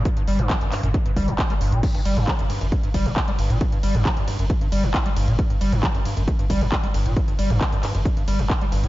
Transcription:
<<
  \new Staff \with { instrumentName = "Acid bass" } { \clef bass \time 4/4 \key g \minor \tempo 4 = 135 g,16 g,16 g16 g,16 g16 fis,16 g,16 fis,16 g,16 g,16 g16 g,16 a,16 g16 g,16 bes,16 | r16 g,16 g16 g,16 g16 fis,16 g,16 fis,16 g,16 g,16 g16 g,16 a,16 g16 g,16 bes,16 | g,16 g,16 g16 g,16 g16 fis,16 g,16 fis,16 g,16 g,16 g16 g,16 a,16 g16 g,16 bes,16 | g,16 g,16 g16 g,16 g16 fis,16 g,16 fis,16 g,16 g,16 g16 g,16 a,16 g16 g,16 bes,16 |
g,16 g,16 g16 g,16 g16 fis,16 g,16 fis,16 g,16 g,16 g16 g,16 a,16 g16 g,16 bes,16 | }
  \new Staff \with { instrumentName = "Sub bass" } { \clef bass \time 4/4 \key g \minor r16 g,,16 g,,16 g,,16 r16 g,,16 r16 g,,16 r16 g,,16 g,,16 g,,16 r16 g,,16 g,,16 g,,16 | r16 g,,16 g,,16 g,,16 r16 g,,16 r16 g,,16 r16 g,,16 g,,16 g,,16 r16 g,,16 g,,16 g,,16 | r16 g,,16 g,,16 g,,16 r16 g,,16 r16 g,,16 r16 g,,16 g,,16 g,,16 r16 g,,16 g,,16 g,,16 | r16 g,,16 g,,16 g,,16 r16 g,,16 r16 g,,16 r16 g,,16 g,,16 g,,16 r16 g,,16 g,,16 g,,16 |
r16 g,,16 g,,16 g,,16 r16 g,,16 r16 g,,16 r16 g,,16 g,,16 g,,16 r16 g,,16 g,,16 g,,16 | }
  \new DrumStaff \with { instrumentName = "Drums" } \drummode { \time 4/4 <hh bd>16 hh16 hho16 <hh toml>16 <hc hh bd>16 hh16 <hc hho>16 <hh toml>16 <hh bd>16 hh16 <hho bd>16 hh16 <hc hh bd>16 hh16 hho16 <hh toml>16 | <cymc hh bd>16 hh16 <hho cymr>16 <hh toml>16 <hc hh bd>16 hh16 <hho cymr>16 hh16 <hh bd>16 hh16 <hho bd cymr>16 hh16 <hc hh bd>16 hh16 <hho cymr>16 <hh toml>16 | <hh bd>16 hh16 <hho cymr>16 <hh toml>16 <hc hh bd>16 hh16 <hho cymr>16 hh16 <hh bd>16 hh16 <hho cymr>16 hh16 <hc hh bd>16 hh16 <hho cymr>16 <hh toml>16 | <hh bd>16 hh16 <hho cymr>16 <hh toml>16 <hc hh bd>16 hh16 <hho cymr>16 hh16 <hh bd>16 hh16 <hho bd cymr>16 hh16 <hc hh bd>16 hh16 <hho cymr>16 <hh toml>16 |
<hh bd>16 hh16 <hho cymr>16 <hh toml>16 <hc hh bd>16 hh16 <hc hho cymr>16 hh16 <hh bd>16 hh16 <hho cymr>16 hh16 <hc hh bd>16 hh16 <hho cymr>16 <hh toml>16 | }
>>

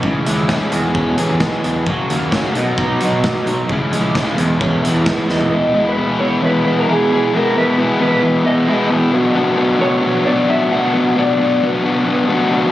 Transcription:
<<
  \new Staff \with { instrumentName = "Clean electric guitar" } { \time 4/4 \key e \lydian \tempo 4 = 132 r1 | r1 | r2. r8 dis''8~ | dis''8. b'8. cis''8 b'8. ais'16 gis'8 gis'8 |
ais'8 b'4 b'4 dis''4 r8 | r4. cis''4 d''8 e''8 fis''8~ | fis''8 d''4 b'4 r4. | }
  \new Staff \with { instrumentName = "Overdriven electric guitar" } { \clef bass \time 4/4 \key e \lydian <cis e gis cis' e'>8 <gis cis' e'>8 <cis e gis cis' e'>8 <e, b, e gis b gis'>4 <e gis b gis'>8 <e gis b gis'>4 | <fis, cis fis ais cis' fis'>8 <fis ais cis' fis'>8 <fis, cis fis ais cis' fis'>8 <b, fis b dis' fis'>4 <b dis' fis'>8 <fis b dis' fis'>4 | <cis e gis cis' e'>8 <gis cis' e'>8 <cis e gis cis' e'>8 <e, b, e gis b e'>4 <e gis b e'>8 <e gis b e'>4 | <e, b, e gis b e'>8 <e, b, e gis b e'>8 <e, b, e gis b e'>8 <e, b, e gis b e'>8 <e, b, e gis b e'>8 <e, b, e gis b e'>8 <e, b, e gis b e'>8 <e, b, e gis b e'>8 |
<e, b, e gis b e'>8 <e, b, e gis b e'>8 <e, b, e gis b e'>8 <e, b, e gis b e'>8 <e, b, e gis b e'>8 <e, b, e gis b e'>8 <e, b, e gis b e'>8 <e, b, e gis b e'>8 | <b, fis b d' fis'>8 <b, fis b d' fis'>8 <b, fis b d' fis'>8 <b, fis b d' fis'>8 <b, fis b d' fis'>8 <b, fis b d' fis'>8 <b, fis b d' fis'>8 <b, fis b d' fis'>8 | <b, fis b d' fis'>8 <b, fis b d' fis'>8 <b, fis b d' fis'>8 <b, fis b d' fis'>8 <b, fis b d' fis'>8 <b, fis b d' fis'>8 <b, fis b d' fis'>8 <b, fis b d' fis'>8 | }
  \new Staff \with { instrumentName = "Overdriven electric guitar" } { \clef bass \time 4/4 \key e \lydian cis8 gis8 cis'8 e,8 cis'8 e8 gis8 e8 | fis8 ais8 cis'8 b,8 dis'8 fis4 fis8 | cis8 gis8 cis'8 e,8 cis'8 e8 gis8 e8 | r1 |
r1 | r1 | r1 | }
  \new Staff \with { instrumentName = "Picked electric bass" } { \clef bass \time 4/4 \key e \lydian cis,16 r16 dis,8 r8 e,4~ e,16 e,8 r16 e,8 | fis,16 r16 dis,8 r8 b,,4~ b,,16 b,,8 r16 b,,8 | cis,16 r16 ais,,8 r8 e,4~ e,16 e,8 r16 e,8 | r1 |
r1 | r1 | r1 | }
  \new DrumStaff \with { instrumentName = "Drums" } \drummode { \time 4/4 bd8 hh8 <bd sn>8 hh8 bd8 hh8 <bd sn>8 hh8 | bd8 hh8 <bd sn>8 hh8 bd8 hh8 <bd sn>8 hh8 | bd8 hh8 <bd sn>8 hh8 bd8 hh8 <bd sn>8 sn16 tomfh16 | r4 r4 r4 r4 |
r4 r4 r4 r4 | r4 r4 r4 r4 | r4 r4 r4 r4 | }
>>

